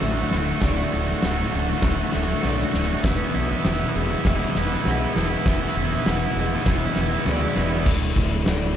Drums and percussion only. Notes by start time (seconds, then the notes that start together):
0.01 snare
0.31 snare
0.62 kick, snare
0.92 snare
1.07 snare
1.22 snare
1.53 snare
1.82 kick, snare
2.12 snare
2.28 snare
2.43 snare
2.73 snare
3.04 kick, snare
3.34 snare
3.50 snare
3.65 snare
3.95 snare
4.25 kick, snare
4.55 snare
4.70 snare
4.85 snare
5.16 snare
5.46 kick, snare
5.76 snare
5.91 snare
6.06 snare
6.36 snare
6.66 kick, snare
6.96 snare
7.11 snare
7.26 snare
7.56 snare
7.86 kick, crash
8.16 kick
8.46 snare, open hi-hat
8.61 snare